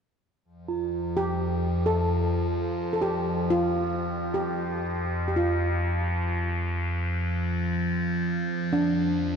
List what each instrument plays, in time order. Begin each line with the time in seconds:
0.45 ambient pad F2 F3
0.68 singing bowl F4
1.17 steel pan G4
1.86 steel pan A4
2.93 steel pan A4
3.02 steel pan G4
3.50 steel pan F4
4.34 steel pan G4
5.28 steel pan G4
5.36 steel pan F4
8.73 steel pan D4